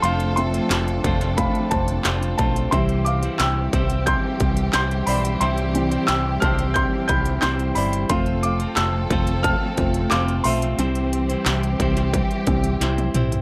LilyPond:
<<
  \new Staff \with { instrumentName = "Felt piano" } { \time 4/4 \key c \major \tempo 4 = 89 <f'' c'''>8 <e'' c'''>4. <f'' b''>8 <c'' a''>4 <c'' a''>8 | <e'' c'''>8 <f'' d'''>8 <g'' e'''>4 <c''' g'''>4 <c''' g'''>8 <d'' b''>8 | <e'' c'''>4 <g'' e'''>8 <a'' f'''>8 <c''' g'''>8 <b'' g'''>8 <c''' g'''>8 <d'' b''>8 | <f'' c'''>8 <f'' d'''>8 <a'' e'''>4 <a'' f'''>4 <f'' d'''>8 <e'' c'''>8~ |
<e'' c'''>2. r4 | }
  \new Staff \with { instrumentName = "Felt piano" } { \clef bass \time 4/4 \key c \major r8 <f a c'>4. <f a c'>8 r4. | <e g c'>1 | r8 <e g c'>8 r2 <e g c'>8 r8 | <f a c'>8 r2 <f a c'>8 r4 |
<e g c'>8 r2 <e g c'>8 r4 | }
  \new Staff \with { instrumentName = "Clean electric guitar" } { \time 4/4 \key c \major <f a c' f' c''>8. <c' f' c''>8. <a c' f' c''>4. <a c' f' c''>8 <a c' f' c''>8 | <c e g c' e' c''>8. <g c' e' c''>8. <g c' e' c''>4. <g c' e' c''>8 <g c' e' c''>8 | <c e g c' e' c''>8. <g c' e' c''>8. <g c' e' c''>4. <g c' e' c''>8 <g c' e' c''>8 | <f a c' f' c''>8. <c' f' c''>8. <a c' f' c''>4. <a c' f' c''>8 <a c' f' c''>8 |
<c e g c' e' c''>8. <g c' e' c''>8. <g c' e' c''>4. <g c' e' c''>8 <g c' e' c''>8 | }
  \new Staff \with { instrumentName = "String section" } { \time 4/4 \key c \major << { <f a a'>1 | <e g g'>1~ | <e g g'>1 | <f a a'>1 |
<e g g'>1 | } \\ { d'1 | c'1 | c'1 | c'1~ |
c'1 | } >> }
  \new Staff \with { instrumentName = "Fingered electric bass" } { \clef bass \time 4/4 \key c \major f,,4 f,,8 f,,8. r16 f,,8 f,,8 b,,8 | c,4 c,8 c,8. r16 c,8 c,8 b,,8 | c,4 c,8 c,8. r16 c,8 c,8 g,,8 | f,,4 f,,8 f,,8. r16 f,,8 f,,8 b,,8 |
c,4 c,8 c,8. r16 c,8 c,8 b,,8 | }
  \new DrumStaff \with { instrumentName = "Drums" } \drummode { \time 4/4 hh16 hh16 hh16 hh16 <hc hh sn>16 hh16 <hh bd>16 <hh sn>16 <hh bd>16 hh16 <hh bd>16 hh16 <hc hh sn>16 hh16 <hh bd>16 hh16 | <hh bd>16 hh16 hh16 hh16 <hc hh sn>8 <hh bd>16 hh16 <hh bd>8 <hh bd>16 hh16 <hc hh sn>16 hh16 hho16 hh16 | hh16 hh16 hh16 hh16 <hc hh sn>8 <hh bd>16 hh16 <hh bd>8 <hh bd>16 hh16 <hc hh sn>16 hh16 hho16 hh16 | <hh bd>16 hh16 hh16 hh16 <hc hh sn>8 <hh bd>16 hh16 <hh bd>8 <hh bd>16 hh16 <hc hh sn>16 hh16 hho16 hh16 |
hh16 hh16 hh16 hh16 <hc hh sn>16 hh16 <hh bd>16 <hh sn>16 <hh bd>16 hh16 <hh bd>16 hh16 <hh sn>16 <hh tommh>16 <hh toml>16 <hh tomfh>16 | }
>>